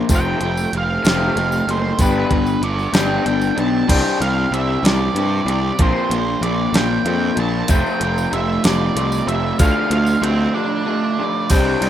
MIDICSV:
0, 0, Header, 1, 6, 480
1, 0, Start_track
1, 0, Tempo, 634249
1, 70, Time_signature, 6, 3, 24, 8
1, 9002, End_track
2, 0, Start_track
2, 0, Title_t, "Lead electric guitar"
2, 0, Program_c, 0, 29
2, 115, Note_on_c, 0, 79, 110
2, 542, Note_off_c, 0, 79, 0
2, 587, Note_on_c, 0, 77, 108
2, 1290, Note_on_c, 0, 72, 81
2, 1309, Note_off_c, 0, 77, 0
2, 1524, Note_off_c, 0, 72, 0
2, 1527, Note_on_c, 0, 71, 86
2, 1994, Note_on_c, 0, 74, 83
2, 2215, Note_off_c, 0, 74, 0
2, 2220, Note_on_c, 0, 79, 95
2, 2448, Note_off_c, 0, 71, 0
2, 2459, Note_off_c, 0, 79, 0
2, 2469, Note_on_c, 0, 79, 87
2, 2716, Note_off_c, 0, 79, 0
2, 2721, Note_on_c, 0, 81, 86
2, 2950, Note_off_c, 0, 81, 0
2, 2953, Note_on_c, 0, 79, 105
2, 3190, Note_on_c, 0, 77, 93
2, 3198, Note_off_c, 0, 79, 0
2, 3436, Note_off_c, 0, 77, 0
2, 3439, Note_on_c, 0, 76, 91
2, 3680, Note_off_c, 0, 76, 0
2, 3683, Note_on_c, 0, 74, 93
2, 4156, Note_off_c, 0, 74, 0
2, 4165, Note_on_c, 0, 74, 84
2, 4404, Note_off_c, 0, 74, 0
2, 4405, Note_on_c, 0, 72, 97
2, 4846, Note_off_c, 0, 72, 0
2, 4867, Note_on_c, 0, 74, 86
2, 5112, Note_on_c, 0, 79, 99
2, 5115, Note_off_c, 0, 74, 0
2, 5597, Note_off_c, 0, 79, 0
2, 5600, Note_on_c, 0, 81, 100
2, 5828, Note_off_c, 0, 81, 0
2, 5831, Note_on_c, 0, 79, 113
2, 6311, Note_on_c, 0, 76, 86
2, 6324, Note_off_c, 0, 79, 0
2, 6541, Note_off_c, 0, 76, 0
2, 6544, Note_on_c, 0, 74, 89
2, 7022, Note_off_c, 0, 74, 0
2, 7025, Note_on_c, 0, 76, 92
2, 7258, Note_off_c, 0, 76, 0
2, 7261, Note_on_c, 0, 77, 104
2, 7502, Note_off_c, 0, 77, 0
2, 7511, Note_on_c, 0, 77, 99
2, 7734, Note_on_c, 0, 72, 86
2, 7747, Note_on_c, 0, 79, 101
2, 7756, Note_off_c, 0, 77, 0
2, 7964, Note_off_c, 0, 72, 0
2, 7970, Note_off_c, 0, 79, 0
2, 7980, Note_on_c, 0, 74, 94
2, 7989, Note_on_c, 0, 81, 93
2, 8498, Note_off_c, 0, 81, 0
2, 8705, Note_on_c, 0, 79, 100
2, 8725, Note_off_c, 0, 74, 0
2, 8936, Note_off_c, 0, 79, 0
2, 8945, Note_on_c, 0, 79, 104
2, 9002, Note_off_c, 0, 79, 0
2, 9002, End_track
3, 0, Start_track
3, 0, Title_t, "Overdriven electric guitar"
3, 0, Program_c, 1, 29
3, 0, Note_on_c, 1, 58, 65
3, 0, Note_on_c, 1, 60, 69
3, 0, Note_on_c, 1, 65, 83
3, 76, Note_off_c, 1, 58, 0
3, 76, Note_off_c, 1, 65, 0
3, 78, Note_off_c, 1, 60, 0
3, 93, Note_on_c, 1, 53, 65
3, 328, Note_on_c, 1, 57, 61
3, 565, Note_on_c, 1, 60, 62
3, 799, Note_on_c, 1, 67, 81
3, 1028, Note_off_c, 1, 60, 0
3, 1037, Note_on_c, 1, 60, 69
3, 1270, Note_off_c, 1, 57, 0
3, 1279, Note_on_c, 1, 57, 66
3, 1281, Note_off_c, 1, 53, 0
3, 1513, Note_off_c, 1, 60, 0
3, 1514, Note_off_c, 1, 57, 0
3, 1516, Note_on_c, 1, 43, 73
3, 1757, Note_on_c, 1, 59, 57
3, 2000, Note_on_c, 1, 62, 69
3, 2219, Note_off_c, 1, 67, 0
3, 2222, Note_on_c, 1, 67, 77
3, 2456, Note_off_c, 1, 62, 0
3, 2465, Note_on_c, 1, 62, 69
3, 2686, Note_off_c, 1, 59, 0
3, 2695, Note_on_c, 1, 59, 62
3, 2712, Note_off_c, 1, 43, 0
3, 2928, Note_off_c, 1, 62, 0
3, 2930, Note_off_c, 1, 59, 0
3, 2930, Note_off_c, 1, 67, 0
3, 2933, Note_on_c, 1, 60, 76
3, 2934, Note_on_c, 1, 55, 76
3, 2937, Note_on_c, 1, 62, 85
3, 2939, Note_on_c, 1, 67, 88
3, 3177, Note_off_c, 1, 67, 0
3, 3181, Note_off_c, 1, 55, 0
3, 3181, Note_off_c, 1, 60, 0
3, 3183, Note_off_c, 1, 62, 0
3, 3187, Note_on_c, 1, 67, 65
3, 3191, Note_on_c, 1, 60, 61
3, 3192, Note_on_c, 1, 62, 64
3, 3194, Note_on_c, 1, 55, 57
3, 3423, Note_off_c, 1, 60, 0
3, 3424, Note_off_c, 1, 55, 0
3, 3428, Note_off_c, 1, 67, 0
3, 3430, Note_off_c, 1, 62, 0
3, 3432, Note_on_c, 1, 60, 68
3, 3433, Note_on_c, 1, 55, 75
3, 3440, Note_on_c, 1, 62, 72
3, 3440, Note_on_c, 1, 67, 78
3, 3652, Note_off_c, 1, 67, 0
3, 3656, Note_off_c, 1, 62, 0
3, 3661, Note_on_c, 1, 67, 81
3, 3662, Note_off_c, 1, 55, 0
3, 3663, Note_off_c, 1, 60, 0
3, 3665, Note_on_c, 1, 62, 67
3, 3671, Note_on_c, 1, 55, 61
3, 3672, Note_on_c, 1, 60, 72
3, 3905, Note_off_c, 1, 55, 0
3, 3905, Note_off_c, 1, 67, 0
3, 3907, Note_off_c, 1, 62, 0
3, 3910, Note_off_c, 1, 60, 0
3, 3914, Note_on_c, 1, 55, 80
3, 3920, Note_on_c, 1, 67, 90
3, 3922, Note_on_c, 1, 60, 80
3, 3922, Note_on_c, 1, 62, 79
3, 4139, Note_off_c, 1, 62, 0
3, 4139, Note_off_c, 1, 67, 0
3, 4145, Note_off_c, 1, 60, 0
3, 4146, Note_off_c, 1, 55, 0
3, 4148, Note_on_c, 1, 62, 69
3, 4148, Note_on_c, 1, 67, 85
3, 4154, Note_on_c, 1, 60, 62
3, 4155, Note_on_c, 1, 55, 67
3, 4368, Note_off_c, 1, 55, 0
3, 4372, Note_off_c, 1, 60, 0
3, 4372, Note_on_c, 1, 53, 78
3, 4377, Note_on_c, 1, 58, 77
3, 4378, Note_off_c, 1, 62, 0
3, 4381, Note_off_c, 1, 67, 0
3, 4381, Note_on_c, 1, 60, 80
3, 4384, Note_on_c, 1, 65, 93
3, 4616, Note_off_c, 1, 60, 0
3, 4620, Note_off_c, 1, 53, 0
3, 4621, Note_off_c, 1, 65, 0
3, 4623, Note_off_c, 1, 58, 0
3, 4625, Note_on_c, 1, 60, 74
3, 4630, Note_on_c, 1, 65, 85
3, 4631, Note_on_c, 1, 58, 65
3, 4633, Note_on_c, 1, 53, 63
3, 4854, Note_off_c, 1, 53, 0
3, 4856, Note_off_c, 1, 58, 0
3, 4863, Note_on_c, 1, 53, 77
3, 4864, Note_off_c, 1, 60, 0
3, 4865, Note_off_c, 1, 65, 0
3, 4866, Note_on_c, 1, 58, 71
3, 4873, Note_on_c, 1, 60, 78
3, 4875, Note_on_c, 1, 65, 77
3, 5105, Note_off_c, 1, 58, 0
3, 5105, Note_off_c, 1, 65, 0
3, 5106, Note_off_c, 1, 53, 0
3, 5107, Note_off_c, 1, 60, 0
3, 5114, Note_on_c, 1, 53, 71
3, 5114, Note_on_c, 1, 58, 73
3, 5115, Note_on_c, 1, 65, 88
3, 5116, Note_on_c, 1, 60, 80
3, 5336, Note_off_c, 1, 53, 0
3, 5339, Note_off_c, 1, 58, 0
3, 5341, Note_off_c, 1, 60, 0
3, 5345, Note_on_c, 1, 53, 74
3, 5346, Note_off_c, 1, 65, 0
3, 5348, Note_on_c, 1, 58, 81
3, 5350, Note_on_c, 1, 60, 81
3, 5355, Note_on_c, 1, 65, 87
3, 5578, Note_off_c, 1, 60, 0
3, 5581, Note_off_c, 1, 58, 0
3, 5581, Note_off_c, 1, 65, 0
3, 5585, Note_off_c, 1, 53, 0
3, 5587, Note_on_c, 1, 60, 81
3, 5590, Note_on_c, 1, 58, 67
3, 5590, Note_on_c, 1, 65, 78
3, 5594, Note_on_c, 1, 53, 62
3, 5815, Note_off_c, 1, 53, 0
3, 5824, Note_off_c, 1, 58, 0
3, 5824, Note_on_c, 1, 53, 88
3, 5827, Note_off_c, 1, 60, 0
3, 5828, Note_on_c, 1, 57, 89
3, 5829, Note_off_c, 1, 65, 0
3, 5836, Note_on_c, 1, 60, 89
3, 5839, Note_on_c, 1, 65, 87
3, 6051, Note_off_c, 1, 65, 0
3, 6057, Note_off_c, 1, 60, 0
3, 6058, Note_off_c, 1, 53, 0
3, 6058, Note_off_c, 1, 57, 0
3, 6060, Note_on_c, 1, 65, 67
3, 6066, Note_on_c, 1, 60, 67
3, 6067, Note_on_c, 1, 53, 60
3, 6067, Note_on_c, 1, 57, 65
3, 6288, Note_off_c, 1, 53, 0
3, 6297, Note_on_c, 1, 53, 73
3, 6298, Note_off_c, 1, 65, 0
3, 6299, Note_off_c, 1, 60, 0
3, 6302, Note_off_c, 1, 57, 0
3, 6307, Note_on_c, 1, 65, 82
3, 6308, Note_on_c, 1, 60, 85
3, 6311, Note_on_c, 1, 57, 78
3, 6537, Note_off_c, 1, 65, 0
3, 6543, Note_off_c, 1, 53, 0
3, 6546, Note_on_c, 1, 65, 99
3, 6548, Note_off_c, 1, 60, 0
3, 6550, Note_off_c, 1, 57, 0
3, 6558, Note_on_c, 1, 53, 69
3, 6558, Note_on_c, 1, 57, 82
3, 6558, Note_on_c, 1, 60, 83
3, 6772, Note_off_c, 1, 53, 0
3, 6773, Note_off_c, 1, 57, 0
3, 6776, Note_off_c, 1, 60, 0
3, 6780, Note_off_c, 1, 65, 0
3, 6781, Note_on_c, 1, 53, 83
3, 6782, Note_on_c, 1, 57, 85
3, 6785, Note_on_c, 1, 60, 82
3, 6789, Note_on_c, 1, 65, 80
3, 7020, Note_off_c, 1, 65, 0
3, 7022, Note_off_c, 1, 60, 0
3, 7025, Note_off_c, 1, 53, 0
3, 7025, Note_off_c, 1, 57, 0
3, 7029, Note_on_c, 1, 65, 76
3, 7031, Note_on_c, 1, 60, 80
3, 7035, Note_on_c, 1, 53, 70
3, 7037, Note_on_c, 1, 57, 79
3, 7262, Note_off_c, 1, 53, 0
3, 7263, Note_off_c, 1, 57, 0
3, 7265, Note_on_c, 1, 50, 77
3, 7268, Note_off_c, 1, 65, 0
3, 7270, Note_off_c, 1, 60, 0
3, 7272, Note_on_c, 1, 57, 85
3, 7277, Note_on_c, 1, 65, 94
3, 7278, Note_on_c, 1, 62, 94
3, 7500, Note_off_c, 1, 57, 0
3, 7501, Note_off_c, 1, 65, 0
3, 7502, Note_off_c, 1, 62, 0
3, 7505, Note_off_c, 1, 50, 0
3, 7509, Note_on_c, 1, 57, 61
3, 7510, Note_on_c, 1, 65, 72
3, 7511, Note_on_c, 1, 62, 65
3, 7514, Note_on_c, 1, 50, 60
3, 7734, Note_off_c, 1, 50, 0
3, 7740, Note_off_c, 1, 57, 0
3, 7741, Note_off_c, 1, 62, 0
3, 7743, Note_on_c, 1, 50, 79
3, 7744, Note_off_c, 1, 65, 0
3, 7749, Note_on_c, 1, 57, 80
3, 7750, Note_on_c, 1, 62, 70
3, 7753, Note_on_c, 1, 65, 86
3, 7969, Note_off_c, 1, 65, 0
3, 7974, Note_off_c, 1, 57, 0
3, 7976, Note_off_c, 1, 62, 0
3, 7978, Note_off_c, 1, 50, 0
3, 7978, Note_on_c, 1, 65, 88
3, 7983, Note_on_c, 1, 57, 83
3, 7985, Note_on_c, 1, 62, 80
3, 7987, Note_on_c, 1, 50, 66
3, 8206, Note_off_c, 1, 50, 0
3, 8212, Note_off_c, 1, 57, 0
3, 8213, Note_off_c, 1, 62, 0
3, 8215, Note_off_c, 1, 65, 0
3, 8215, Note_on_c, 1, 50, 79
3, 8222, Note_on_c, 1, 57, 87
3, 8222, Note_on_c, 1, 62, 84
3, 8224, Note_on_c, 1, 65, 86
3, 8461, Note_off_c, 1, 50, 0
3, 8465, Note_off_c, 1, 57, 0
3, 8465, Note_off_c, 1, 62, 0
3, 8466, Note_off_c, 1, 65, 0
3, 8474, Note_on_c, 1, 62, 70
3, 8476, Note_on_c, 1, 65, 73
3, 8478, Note_on_c, 1, 57, 68
3, 8481, Note_on_c, 1, 50, 65
3, 8711, Note_off_c, 1, 62, 0
3, 8712, Note_off_c, 1, 65, 0
3, 8713, Note_off_c, 1, 57, 0
3, 8714, Note_off_c, 1, 50, 0
3, 9002, End_track
4, 0, Start_track
4, 0, Title_t, "Overdriven electric guitar"
4, 0, Program_c, 2, 29
4, 78, Note_on_c, 2, 57, 98
4, 81, Note_on_c, 2, 60, 103
4, 298, Note_off_c, 2, 57, 0
4, 301, Note_off_c, 2, 60, 0
4, 302, Note_on_c, 2, 53, 69
4, 522, Note_off_c, 2, 53, 0
4, 777, Note_on_c, 2, 53, 93
4, 781, Note_on_c, 2, 57, 91
4, 785, Note_on_c, 2, 60, 89
4, 1009, Note_off_c, 2, 53, 0
4, 1011, Note_off_c, 2, 57, 0
4, 1013, Note_off_c, 2, 60, 0
4, 1027, Note_on_c, 2, 53, 65
4, 1032, Note_on_c, 2, 57, 75
4, 1244, Note_off_c, 2, 53, 0
4, 1247, Note_off_c, 2, 57, 0
4, 1270, Note_on_c, 2, 53, 73
4, 1486, Note_off_c, 2, 53, 0
4, 1513, Note_on_c, 2, 59, 100
4, 1515, Note_on_c, 2, 62, 90
4, 1522, Note_on_c, 2, 67, 98
4, 1736, Note_off_c, 2, 59, 0
4, 1738, Note_off_c, 2, 62, 0
4, 1741, Note_off_c, 2, 67, 0
4, 1751, Note_on_c, 2, 62, 69
4, 1966, Note_off_c, 2, 62, 0
4, 2219, Note_on_c, 2, 59, 97
4, 2225, Note_on_c, 2, 62, 97
4, 2449, Note_off_c, 2, 59, 0
4, 2452, Note_off_c, 2, 62, 0
4, 2464, Note_on_c, 2, 59, 67
4, 2680, Note_off_c, 2, 59, 0
4, 2695, Note_on_c, 2, 62, 73
4, 2918, Note_off_c, 2, 62, 0
4, 7258, Note_on_c, 2, 53, 97
4, 7488, Note_off_c, 2, 53, 0
4, 7499, Note_on_c, 2, 53, 70
4, 7719, Note_off_c, 2, 53, 0
4, 7737, Note_on_c, 2, 53, 73
4, 7958, Note_off_c, 2, 53, 0
4, 7984, Note_on_c, 2, 53, 82
4, 8202, Note_off_c, 2, 53, 0
4, 8219, Note_on_c, 2, 53, 68
4, 8439, Note_off_c, 2, 53, 0
4, 8466, Note_on_c, 2, 53, 84
4, 8683, Note_off_c, 2, 53, 0
4, 8708, Note_on_c, 2, 55, 108
4, 8713, Note_on_c, 2, 60, 99
4, 8717, Note_on_c, 2, 62, 111
4, 8936, Note_off_c, 2, 55, 0
4, 8941, Note_off_c, 2, 62, 0
4, 8942, Note_off_c, 2, 60, 0
4, 8945, Note_on_c, 2, 55, 87
4, 8945, Note_on_c, 2, 60, 92
4, 8950, Note_on_c, 2, 62, 102
4, 9002, Note_off_c, 2, 55, 0
4, 9002, Note_off_c, 2, 60, 0
4, 9002, Note_off_c, 2, 62, 0
4, 9002, End_track
5, 0, Start_track
5, 0, Title_t, "Picked electric bass"
5, 0, Program_c, 3, 34
5, 72, Note_on_c, 3, 29, 105
5, 255, Note_off_c, 3, 29, 0
5, 310, Note_on_c, 3, 29, 77
5, 493, Note_off_c, 3, 29, 0
5, 553, Note_on_c, 3, 29, 89
5, 735, Note_off_c, 3, 29, 0
5, 794, Note_on_c, 3, 29, 92
5, 975, Note_off_c, 3, 29, 0
5, 1029, Note_on_c, 3, 29, 95
5, 1213, Note_off_c, 3, 29, 0
5, 1266, Note_on_c, 3, 30, 78
5, 1451, Note_off_c, 3, 30, 0
5, 1503, Note_on_c, 3, 31, 101
5, 1689, Note_off_c, 3, 31, 0
5, 1745, Note_on_c, 3, 31, 83
5, 1930, Note_off_c, 3, 31, 0
5, 1977, Note_on_c, 3, 31, 82
5, 2165, Note_off_c, 3, 31, 0
5, 2218, Note_on_c, 3, 31, 89
5, 2405, Note_off_c, 3, 31, 0
5, 2467, Note_on_c, 3, 31, 89
5, 2651, Note_off_c, 3, 31, 0
5, 2706, Note_on_c, 3, 35, 74
5, 2891, Note_off_c, 3, 35, 0
5, 2940, Note_on_c, 3, 36, 93
5, 3035, Note_off_c, 3, 36, 0
5, 3182, Note_on_c, 3, 36, 83
5, 3368, Note_off_c, 3, 36, 0
5, 3415, Note_on_c, 3, 36, 83
5, 3603, Note_off_c, 3, 36, 0
5, 3655, Note_on_c, 3, 36, 109
5, 3843, Note_off_c, 3, 36, 0
5, 3895, Note_on_c, 3, 43, 87
5, 4084, Note_off_c, 3, 43, 0
5, 4127, Note_on_c, 3, 36, 88
5, 4319, Note_off_c, 3, 36, 0
5, 4383, Note_on_c, 3, 34, 103
5, 4477, Note_off_c, 3, 34, 0
5, 4617, Note_on_c, 3, 34, 84
5, 4805, Note_off_c, 3, 34, 0
5, 4853, Note_on_c, 3, 34, 89
5, 5042, Note_off_c, 3, 34, 0
5, 5090, Note_on_c, 3, 34, 104
5, 5281, Note_off_c, 3, 34, 0
5, 5334, Note_on_c, 3, 41, 86
5, 5523, Note_off_c, 3, 41, 0
5, 5578, Note_on_c, 3, 34, 94
5, 5765, Note_off_c, 3, 34, 0
5, 5822, Note_on_c, 3, 29, 101
5, 5916, Note_off_c, 3, 29, 0
5, 6062, Note_on_c, 3, 29, 82
5, 6248, Note_off_c, 3, 29, 0
5, 6302, Note_on_c, 3, 29, 86
5, 6488, Note_off_c, 3, 29, 0
5, 6545, Note_on_c, 3, 29, 108
5, 6729, Note_off_c, 3, 29, 0
5, 6778, Note_on_c, 3, 36, 89
5, 6965, Note_off_c, 3, 36, 0
5, 7016, Note_on_c, 3, 29, 96
5, 7204, Note_off_c, 3, 29, 0
5, 7261, Note_on_c, 3, 38, 101
5, 7355, Note_off_c, 3, 38, 0
5, 7495, Note_on_c, 3, 38, 87
5, 7683, Note_off_c, 3, 38, 0
5, 7733, Note_on_c, 3, 38, 81
5, 7922, Note_off_c, 3, 38, 0
5, 8706, Note_on_c, 3, 36, 100
5, 8890, Note_off_c, 3, 36, 0
5, 8941, Note_on_c, 3, 36, 86
5, 9002, Note_off_c, 3, 36, 0
5, 9002, End_track
6, 0, Start_track
6, 0, Title_t, "Drums"
6, 68, Note_on_c, 9, 42, 76
6, 71, Note_on_c, 9, 36, 104
6, 74, Note_on_c, 9, 54, 98
6, 144, Note_off_c, 9, 42, 0
6, 147, Note_off_c, 9, 36, 0
6, 149, Note_off_c, 9, 54, 0
6, 308, Note_on_c, 9, 42, 61
6, 383, Note_off_c, 9, 42, 0
6, 433, Note_on_c, 9, 54, 73
6, 509, Note_off_c, 9, 54, 0
6, 554, Note_on_c, 9, 42, 54
6, 630, Note_off_c, 9, 42, 0
6, 791, Note_on_c, 9, 54, 95
6, 798, Note_on_c, 9, 42, 73
6, 807, Note_on_c, 9, 38, 110
6, 866, Note_off_c, 9, 54, 0
6, 873, Note_off_c, 9, 42, 0
6, 882, Note_off_c, 9, 38, 0
6, 1035, Note_on_c, 9, 54, 29
6, 1036, Note_on_c, 9, 42, 53
6, 1111, Note_off_c, 9, 54, 0
6, 1112, Note_off_c, 9, 42, 0
6, 1150, Note_on_c, 9, 54, 64
6, 1226, Note_off_c, 9, 54, 0
6, 1274, Note_on_c, 9, 54, 28
6, 1277, Note_on_c, 9, 42, 53
6, 1350, Note_off_c, 9, 54, 0
6, 1353, Note_off_c, 9, 42, 0
6, 1503, Note_on_c, 9, 42, 75
6, 1507, Note_on_c, 9, 36, 102
6, 1513, Note_on_c, 9, 54, 87
6, 1579, Note_off_c, 9, 42, 0
6, 1583, Note_off_c, 9, 36, 0
6, 1589, Note_off_c, 9, 54, 0
6, 1745, Note_on_c, 9, 42, 58
6, 1747, Note_on_c, 9, 36, 74
6, 1821, Note_off_c, 9, 42, 0
6, 1823, Note_off_c, 9, 36, 0
6, 1866, Note_on_c, 9, 54, 63
6, 1942, Note_off_c, 9, 54, 0
6, 1989, Note_on_c, 9, 42, 55
6, 2064, Note_off_c, 9, 42, 0
6, 2112, Note_on_c, 9, 54, 28
6, 2187, Note_off_c, 9, 54, 0
6, 2222, Note_on_c, 9, 42, 76
6, 2227, Note_on_c, 9, 54, 94
6, 2231, Note_on_c, 9, 38, 107
6, 2298, Note_off_c, 9, 42, 0
6, 2302, Note_off_c, 9, 54, 0
6, 2307, Note_off_c, 9, 38, 0
6, 2467, Note_on_c, 9, 42, 52
6, 2470, Note_on_c, 9, 54, 28
6, 2543, Note_off_c, 9, 42, 0
6, 2546, Note_off_c, 9, 54, 0
6, 2584, Note_on_c, 9, 54, 69
6, 2660, Note_off_c, 9, 54, 0
6, 2707, Note_on_c, 9, 42, 55
6, 2783, Note_off_c, 9, 42, 0
6, 2946, Note_on_c, 9, 36, 105
6, 2947, Note_on_c, 9, 42, 91
6, 2947, Note_on_c, 9, 49, 100
6, 3022, Note_off_c, 9, 36, 0
6, 3023, Note_off_c, 9, 42, 0
6, 3023, Note_off_c, 9, 49, 0
6, 3192, Note_on_c, 9, 42, 69
6, 3267, Note_off_c, 9, 42, 0
6, 3434, Note_on_c, 9, 42, 66
6, 3509, Note_off_c, 9, 42, 0
6, 3671, Note_on_c, 9, 42, 86
6, 3680, Note_on_c, 9, 38, 110
6, 3746, Note_off_c, 9, 42, 0
6, 3755, Note_off_c, 9, 38, 0
6, 3906, Note_on_c, 9, 42, 64
6, 3981, Note_off_c, 9, 42, 0
6, 4150, Note_on_c, 9, 42, 58
6, 4225, Note_off_c, 9, 42, 0
6, 4380, Note_on_c, 9, 42, 86
6, 4384, Note_on_c, 9, 36, 114
6, 4456, Note_off_c, 9, 42, 0
6, 4459, Note_off_c, 9, 36, 0
6, 4627, Note_on_c, 9, 42, 70
6, 4702, Note_off_c, 9, 42, 0
6, 4865, Note_on_c, 9, 42, 64
6, 4941, Note_off_c, 9, 42, 0
6, 5103, Note_on_c, 9, 42, 85
6, 5112, Note_on_c, 9, 38, 110
6, 5179, Note_off_c, 9, 42, 0
6, 5188, Note_off_c, 9, 38, 0
6, 5341, Note_on_c, 9, 42, 61
6, 5416, Note_off_c, 9, 42, 0
6, 5578, Note_on_c, 9, 42, 59
6, 5653, Note_off_c, 9, 42, 0
6, 5814, Note_on_c, 9, 42, 97
6, 5822, Note_on_c, 9, 36, 109
6, 5825, Note_on_c, 9, 54, 103
6, 5889, Note_off_c, 9, 42, 0
6, 5897, Note_off_c, 9, 36, 0
6, 5901, Note_off_c, 9, 54, 0
6, 5951, Note_on_c, 9, 54, 34
6, 6027, Note_off_c, 9, 54, 0
6, 6061, Note_on_c, 9, 42, 76
6, 6137, Note_off_c, 9, 42, 0
6, 6189, Note_on_c, 9, 54, 77
6, 6265, Note_off_c, 9, 54, 0
6, 6304, Note_on_c, 9, 42, 70
6, 6379, Note_off_c, 9, 42, 0
6, 6538, Note_on_c, 9, 42, 98
6, 6545, Note_on_c, 9, 54, 95
6, 6548, Note_on_c, 9, 38, 114
6, 6614, Note_off_c, 9, 42, 0
6, 6620, Note_off_c, 9, 54, 0
6, 6623, Note_off_c, 9, 38, 0
6, 6786, Note_on_c, 9, 42, 72
6, 6861, Note_off_c, 9, 42, 0
6, 6901, Note_on_c, 9, 54, 79
6, 6977, Note_off_c, 9, 54, 0
6, 7027, Note_on_c, 9, 42, 66
6, 7103, Note_off_c, 9, 42, 0
6, 7258, Note_on_c, 9, 54, 94
6, 7262, Note_on_c, 9, 42, 99
6, 7263, Note_on_c, 9, 36, 120
6, 7334, Note_off_c, 9, 54, 0
6, 7337, Note_off_c, 9, 42, 0
6, 7339, Note_off_c, 9, 36, 0
6, 7500, Note_on_c, 9, 42, 76
6, 7576, Note_off_c, 9, 42, 0
6, 7617, Note_on_c, 9, 54, 72
6, 7692, Note_off_c, 9, 54, 0
6, 7746, Note_on_c, 9, 42, 75
6, 7822, Note_off_c, 9, 42, 0
6, 8701, Note_on_c, 9, 51, 99
6, 8706, Note_on_c, 9, 36, 114
6, 8706, Note_on_c, 9, 54, 98
6, 8777, Note_off_c, 9, 51, 0
6, 8782, Note_off_c, 9, 36, 0
6, 8782, Note_off_c, 9, 54, 0
6, 8944, Note_on_c, 9, 51, 77
6, 9002, Note_off_c, 9, 51, 0
6, 9002, End_track
0, 0, End_of_file